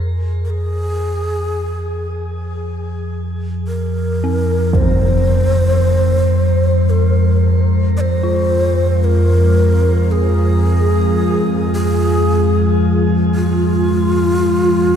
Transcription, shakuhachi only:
0, 0, Header, 1, 2, 480
1, 0, Start_track
1, 0, Key_signature, -4, "minor"
1, 0, Tempo, 1071429
1, 208, Time_signature, 4, 2, 24, 8
1, 6703, End_track
2, 0, Start_track
2, 0, Title_t, "Shakuhachi"
2, 0, Program_c, 0, 77
2, 202, Note_on_c, 0, 70, 89
2, 224, Note_on_c, 0, 68, 97
2, 228, Note_off_c, 0, 70, 0
2, 1147, Note_off_c, 0, 68, 0
2, 1646, Note_on_c, 0, 70, 93
2, 2128, Note_on_c, 0, 72, 101
2, 2135, Note_off_c, 0, 70, 0
2, 3089, Note_on_c, 0, 70, 82
2, 3095, Note_off_c, 0, 72, 0
2, 3447, Note_off_c, 0, 70, 0
2, 3571, Note_on_c, 0, 74, 84
2, 3587, Note_on_c, 0, 72, 91
2, 3591, Note_off_c, 0, 74, 0
2, 4052, Note_on_c, 0, 70, 97
2, 4058, Note_off_c, 0, 72, 0
2, 4531, Note_on_c, 0, 68, 98
2, 4538, Note_off_c, 0, 70, 0
2, 5250, Note_off_c, 0, 68, 0
2, 5259, Note_on_c, 0, 68, 99
2, 5834, Note_off_c, 0, 68, 0
2, 5982, Note_on_c, 0, 65, 92
2, 6703, Note_off_c, 0, 65, 0
2, 6703, End_track
0, 0, End_of_file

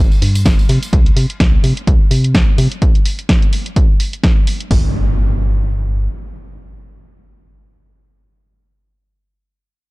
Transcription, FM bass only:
0, 0, Header, 1, 2, 480
1, 0, Start_track
1, 0, Tempo, 472441
1, 943, Time_signature, 4, 2, 24, 8
1, 10063, End_track
2, 0, Start_track
2, 0, Title_t, "FM bass"
2, 0, Program_c, 0, 39
2, 223, Note_on_c, 0, 43, 81
2, 463, Note_on_c, 0, 31, 88
2, 478, Note_off_c, 0, 43, 0
2, 562, Note_off_c, 0, 31, 0
2, 703, Note_on_c, 0, 48, 92
2, 802, Note_off_c, 0, 48, 0
2, 943, Note_on_c, 0, 36, 98
2, 1128, Note_off_c, 0, 36, 0
2, 1183, Note_on_c, 0, 48, 82
2, 1282, Note_off_c, 0, 48, 0
2, 1423, Note_on_c, 0, 36, 86
2, 1608, Note_off_c, 0, 36, 0
2, 1662, Note_on_c, 0, 48, 84
2, 1762, Note_off_c, 0, 48, 0
2, 1903, Note_on_c, 0, 36, 83
2, 2003, Note_off_c, 0, 36, 0
2, 2142, Note_on_c, 0, 48, 79
2, 2383, Note_on_c, 0, 36, 85
2, 2398, Note_off_c, 0, 48, 0
2, 2482, Note_off_c, 0, 36, 0
2, 2622, Note_on_c, 0, 48, 99
2, 2722, Note_off_c, 0, 48, 0
2, 4782, Note_on_c, 0, 31, 97
2, 6182, Note_off_c, 0, 31, 0
2, 10063, End_track
0, 0, End_of_file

